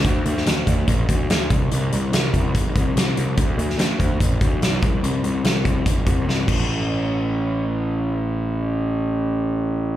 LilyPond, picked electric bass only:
\new Staff \with { instrumentName = "Picked electric bass" } { \clef bass \time 4/4 \key c \major \tempo 4 = 144 d,8 d,8 d,8 d,8 a,,8 d,8 d,8 c,8 | c,8 c,8 c,8 c,8 g,,8 c,8 c,8 c,8 | d,8 d,8 d,8 d,8 a,,8 d,8 b,,8 c,8 | c,8 c,8 c,8 c,8 g,,8 c,8 c,8 a,,8~ |
a,,1~ | a,,1 | }